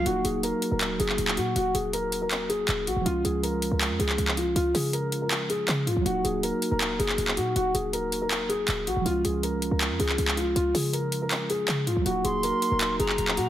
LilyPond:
<<
  \new Staff \with { instrumentName = "Flute" } { \time 4/4 \key ees \minor \tempo 4 = 160 r1 | r1 | r1 | r1 |
r1 | r1 | r1 | r1 |
r8 c'''2 bes''4. | }
  \new Staff \with { instrumentName = "Grand piano" } { \time 4/4 \key ees \minor ges'8 aes'8 bes'8. bes'8. aes'4 ges'8 | ges'8 aes'8 bes'8. bes'8. aes'4 ges'8 | f'8 aes'8 bes'8. bes'8. aes'4 f'8 | f'8 aes'8 bes'8. bes'8. aes'4 f'8 |
ges'8 aes'8 bes'8. bes'8. aes'4 ges'8 | ges'8 aes'8 bes'8. bes'8. aes'4 ges'8 | f'8 aes'8 bes'8. bes'8. aes'4 f'8 | f'8 aes'8 bes'8. bes'8. aes'4 f'8 |
ges'8 aes'8 bes'8. bes'8. aes'4 ges'8 | }
  \new Staff \with { instrumentName = "Synth keys" } { \time 4/4 \key ees \minor <ges bes ees' ges'>1~ | <ges bes ees' ges'>1 | <f aes des' f'>1~ | <f aes des' f'>1 |
<ges bes ees' ges'>1~ | <ges bes ees' ges'>1 | <f aes des' f'>1~ | <f aes des' f'>1 |
<ges bes ees' ges'>1 | }
  \new Staff \with { instrumentName = "808-style bass" } { \clef bass \time 4/4 \key ees \minor ees,,8 ees,,8. r8 ees,,8. ges,,8 ees,,8 bes,8 | ees,,8 ees,,2~ ees,,8 ees,,8 bes,,16 ees,,16 | des,8 des,8. c,8 des,8 f,16 des,8 des,4 | des,8 des2~ des8 des8 aes,16 des,16 |
ees,,8 ees,,8. r8 ees,,8. ges,,8 ees,,8 bes,8 | ees,,8 ees,,2~ ees,,8 ees,,8 bes,,16 ees,,16 | des,8 des,8. c,8 des,8 f,16 des,8 des,4 | des,8 des2~ des8 des8 aes,16 des,16 |
ees,,8 ees,,8. r8 ees,,8. ges,,8 ees,,8 bes,8 | }
  \new DrumStaff \with { instrumentName = "Drums" } \drummode { \time 4/4 hh8 hh8 hh8 hh8 <hc hh>8 hh16 hc16 hh16 hc16 hh8 | hh8 hh8 hh8 hh8 <hc hh>8 hh8 <hc hh>8 hh8 | hh8 hh8 hh8 hh8 <hc hh>8 hh16 hc16 hh16 hc16 hh8 | hh8 hho8 hh8 hh8 <hc hh>8 hh8 <hc hh>8 hh8 |
hh8 hh8 hh8 hh8 <hc hh>8 hh16 hc16 hh16 hc16 hh8 | hh8 hh8 hh8 hh8 <hc hh>8 hh8 <hc hh>8 hh8 | hh8 hh8 hh8 hh8 <hc hh>8 hh16 hc16 hh16 hc16 hh8 | hh8 hho8 hh8 hh8 <hc hh>8 hh8 <hc hh>8 hh8 |
hh8 hh8 hh8 hh8 <hc hh>8 hh16 hc16 hh16 hc16 hh8 | }
>>